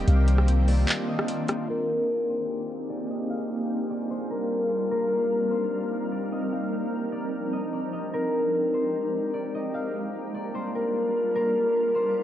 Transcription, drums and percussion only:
0.08 closed hi-hat medium
0.28 closed hi-hat medium
0.38 cross-stick medium
0.48 closed hi-hat medium
0.68 open hi-hat medium
0.88 clap loud
0.88 closed hi-hat medium
1.19 cross-stick loud
1.28 closed hi-hat medium
1.48 cross-stick loud
1.48 closed hi-hat medium

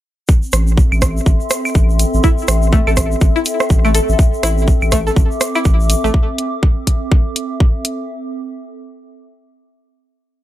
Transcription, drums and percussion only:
0.28 kick loud
0.28 shaker medium
0.43 shaker soft
0.52 cross-stick medium
0.52 closed hi-hat medium
0.52 shaker medium
0.67 shaker soft
0.77 kick loud
0.77 shaker soft
0.92 claves medium
0.92 shaker soft
1.02 kick medium
1.02 cross-stick medium
1.02 closed hi-hat medium
1.02 shaker medium
1.17 shaker soft
1.26 kick loud
1.26 shaker medium
1.41 shaker soft
1.50 cross-stick medium
1.50 closed hi-hat medium
1.50 shaker loud
1.65 claves medium
1.65 shaker soft
1.75 kick loud
1.75 shaker soft
1.90 shaker soft
1.99 closed hi-hat medium
1.99 shaker medium
2.14 shaker soft
2.24 kick loud
2.24 shaker medium
2.38 shaker soft
2.48 cross-stick medium
2.48 closed hi-hat loud
2.48 shaker loud
2.62 shaker soft
2.73 kick loud
2.73 shaker soft
2.87 claves medium
2.87 shaker soft
2.97 kick medium
2.97 cross-stick medium
2.97 closed hi-hat medium
2.97 shaker medium
3.12 shaker soft
3.21 kick loud
3.21 shaker medium
3.36 shaker soft
3.45 closed hi-hat medium
3.45 shaker medium
3.60 cross-stick medium
3.60 shaker soft
3.70 kick loud
3.70 shaker medium
3.85 claves medium
3.85 shaker soft
3.95 closed hi-hat medium
3.95 shaker loud
4.09 shaker soft
4.19 kick loud
4.19 shaker medium
4.34 shaker soft
4.43 cross-stick medium
4.43 closed hi-hat medium
4.43 shaker loud
4.58 shaker soft
4.68 kick loud
4.68 shaker soft
4.82 claves medium
4.82 shaker soft
4.92 kick medium
4.92 cross-stick medium
4.92 closed hi-hat loud
4.92 shaker loud
5.07 shaker soft
5.16 kick loud
5.16 shaker medium
5.31 shaker soft
5.41 cross-stick medium
5.41 closed hi-hat loud
5.41 shaker loud
5.55 claves medium
5.55 shaker soft
5.65 kick loud
5.65 shaker medium
5.80 shaker soft
5.90 closed hi-hat loud
5.90 shaker loud
6.05 shaker soft
6.14 kick loud
6.38 closed hi-hat medium
6.63 kick loud
6.87 kick medium
6.87 closed hi-hat loud
7.12 kick loud
7.36 closed hi-hat loud
7.60 kick loud
7.85 closed hi-hat medium

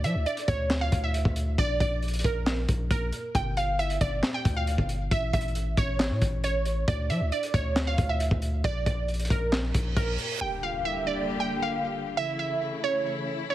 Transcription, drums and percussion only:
0.04 closed hi-hat medium
0.26 closed hi-hat soft
0.37 closed hi-hat medium
0.48 kick loud
0.48 closed hi-hat medium
0.70 snare loud
0.70 clap loud
0.92 kick medium
0.92 closed hi-hat medium
1.14 closed hi-hat medium
1.25 kick medium
1.36 closed hi-hat medium
1.58 kick loud
1.58 closed hi-hat medium
1.80 kick loud
1.80 closed hi-hat medium
2.02 closed hi-hat soft
2.08 closed hi-hat medium
2.13 closed hi-hat medium
2.19 closed hi-hat medium
2.24 kick medium
2.24 closed hi-hat medium
2.47 snare loud
2.47 clap medium
2.69 kick loud
2.69 closed hi-hat medium
2.91 kick medium
2.91 closed hi-hat medium
3.12 closed hi-hat medium
3.35 kick loud
3.35 closed hi-hat medium
3.57 closed hi-hat medium
3.79 closed hi-hat soft
3.90 closed hi-hat medium
4.01 kick loud
4.01 closed hi-hat medium
4.23 snare loud
4.23 clap medium
4.45 kick loud
4.45 closed hi-hat medium
4.67 closed hi-hat medium
4.78 kick medium
4.89 closed hi-hat medium
5.11 kick loud
5.11 closed hi-hat medium
5.33 kick loud
5.33 closed hi-hat medium
5.41 closed hi-hat medium
5.48 closed hi-hat soft
5.55 closed hi-hat medium
5.77 kick loud
5.77 closed hi-hat medium
6.00 snare loud
6.00 clap medium
6.22 kick medium
6.22 closed hi-hat medium
6.44 closed hi-hat medium
6.66 closed hi-hat medium
6.88 kick loud
6.88 closed hi-hat medium
7.10 closed hi-hat medium
7.32 closed hi-hat soft
7.43 closed hi-hat medium
7.54 kick medium
7.54 closed hi-hat medium
7.76 snare loud
7.76 clap medium
7.98 kick medium
7.98 closed hi-hat medium
8.20 closed hi-hat medium
8.31 kick medium
8.42 closed hi-hat medium
8.64 kick loud
8.64 closed hi-hat medium
8.86 kick loud
8.86 closed hi-hat medium
9.08 closed hi-hat soft
9.14 closed hi-hat soft
9.19 closed hi-hat medium
9.25 closed hi-hat medium
9.30 kick loud
9.30 closed hi-hat medium
9.52 snare loud
9.52 clap medium
9.74 kick loud
9.74 closed hi-hat medium
9.97 kick loud
9.97 closed hi-hat medium
10.18 closed hi-hat medium

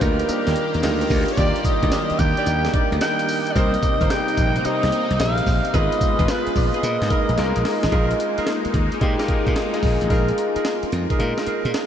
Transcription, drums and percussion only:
0.01 kick loud
0.01 closed hi-hat medium
0.01 tambourine medium
0.19 closed hi-hat medium
0.29 closed hi-hat medium
0.29 tambourine medium
0.47 snare medium
0.47 closed hi-hat medium
0.56 closed hi-hat medium
0.74 closed hi-hat soft
0.83 snare loud
0.83 closed hi-hat medium
0.83 tambourine medium
1.01 closed hi-hat medium
1.10 kick loud
1.10 open hi-hat medium
1.10 tambourine medium
1.28 closed hi-hat medium
1.38 kick loud
1.38 closed hi-hat medium
1.38 tambourine medium
1.56 closed hi-hat medium
1.65 kick loud
1.65 closed hi-hat medium
1.65 tambourine medium
1.83 kick loud
1.83 closed hi-hat medium
1.92 snare loud
1.92 closed hi-hat medium
1.92 tambourine loud
2.10 closed hi-hat soft
2.19 kick loud
2.19 closed hi-hat medium
2.19 tambourine medium
2.37 closed hi-hat medium
2.46 closed hi-hat medium
2.46 tambourine medium
2.65 snare medium
2.65 closed hi-hat medium
2.74 kick loud
2.74 closed hi-hat medium
2.92 closed hi-hat soft
3.01 snare loud
3.01 closed hi-hat medium
3.01 tambourine medium
3.19 closed hi-hat medium
3.29 open hi-hat medium
3.29 tambourine medium
3.47 closed hi-hat medium
3.56 kick loud
3.56 closed hi-hat medium
3.56 tambourine medium
3.74 closed hi-hat medium
3.83 kick loud
3.83 closed hi-hat medium
3.83 tambourine medium
4.01 kick loud
4.01 closed hi-hat medium
4.10 snare loud
4.10 closed hi-hat medium
4.10 tambourine loud
4.28 closed hi-hat soft
4.37 kick medium
4.37 closed hi-hat medium
4.37 tambourine medium
4.56 closed hi-hat medium
4.65 closed hi-hat medium
4.65 tambourine medium
4.83 snare medium
4.83 closed hi-hat medium
4.92 closed hi-hat medium
5.11 closed hi-hat soft
5.20 snare loud
5.20 closed hi-hat medium
5.20 tambourine medium
5.38 closed hi-hat medium
5.47 kick medium
5.47 open hi-hat medium
5.47 tambourine medium
5.65 closed hi-hat medium
5.74 kick loud
5.74 closed hi-hat medium
5.74 tambourine medium
5.92 closed hi-hat medium
6.01 kick loud
6.01 closed hi-hat medium
6.01 tambourine medium
6.19 kick medium
6.19 closed hi-hat medium
6.28 snare loud
6.28 closed hi-hat medium
6.28 tambourine loud
6.47 closed hi-hat soft
6.56 kick loud
6.56 open hi-hat medium
6.56 tambourine medium
6.74 closed hi-hat soft
6.83 closed hi-hat medium
6.83 tambourine medium
7.02 snare medium
7.02 closed hi-hat medium
7.10 kick medium
7.10 closed hi-hat medium
7.29 closed hi-hat soft
7.38 snare medium
7.38 closed hi-hat medium
7.56 closed hi-hat medium
7.65 snare loud
7.65 open hi-hat medium
7.83 snare loud
7.83 closed hi-hat medium
7.92 kick loud
7.92 closed hi-hat medium
8.11 closed hi-hat medium
8.20 closed hi-hat medium
8.38 closed hi-hat medium
8.47 snare loud
8.47 closed hi-hat medium
8.65 closed hi-hat soft
8.74 kick medium
8.74 closed hi-hat medium
8.92 closed hi-hat soft
9.01 kick loud
9.01 closed hi-hat medium
9.19 snare medium
9.19 closed hi-hat medium
9.28 kick medium
9.28 closed hi-hat medium
9.47 kick medium
9.47 closed hi-hat soft
9.56 snare loud
9.56 closed hi-hat medium
9.74 closed hi-hat medium
9.83 kick loud
9.83 open hi-hat medium
10.01 closed hi-hat medium
10.10 kick loud
10.10 closed hi-hat medium
10.29 closed hi-hat medium
10.38 closed hi-hat medium
10.56 closed hi-hat medium
10.65 snare loud
10.65 closed hi-hat medium
10.83 closed hi-hat soft
10.92 closed hi-hat medium
11.10 kick medium
11.10 closed hi-hat soft
11.20 closed hi-hat medium
11.38 snare medium
11.38 closed hi-hat medium
11.46 closed hi-hat medium
11.65 closed hi-hat soft
11.74 snare loud
11.74 closed hi-hat medium

